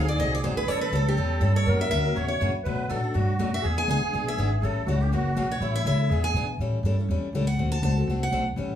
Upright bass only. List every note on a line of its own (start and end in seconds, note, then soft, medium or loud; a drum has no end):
0.00 0.18 D2 medium
0.18 0.42 C2 medium
0.44 0.66 G#1 medium
0.67 0.80 A1 medium
0.80 muted upright bass stroke soft
0.91 1.15 C#2 medium
1.16 1.40 E2 medium
1.40 1.65 G2 medium
1.66 1.90 F#2 medium
1.91 2.15 D2 medium
2.16 2.40 E2 medium
2.41 2.64 F#2 medium
2.66 2.89 B2 medium
2.90 3.14 A2 medium
3.15 3.38 G2 medium
3.39 3.63 F#2 medium
3.64 3.87 E2 medium
3.88 4.01 C#2 medium
4.02 muted upright bass stroke soft
4.13 4.37 B1 medium
4.37 4.61 G#1 medium
4.62 4.86 A1 medium
4.86 5.11 C#2 medium
5.12 5.35 F#1 medium
5.36 5.60 A#1 medium
5.60 5.84 A1 medium
5.85 6.09 C#2 medium
6.09 6.33 E2 medium
6.34 6.58 B2 medium
6.59 6.82 A2 medium
6.83 7.08 G2 medium
7.09 7.22 E2 medium
7.22 muted upright bass stroke soft
7.33 7.57 C#2 medium
7.58 7.82 D2 medium
7.82 8.07 C#2 medium
8.08 8.31 C2 medium
8.31 8.56 B1 medium
8.56 8.75 A1 medium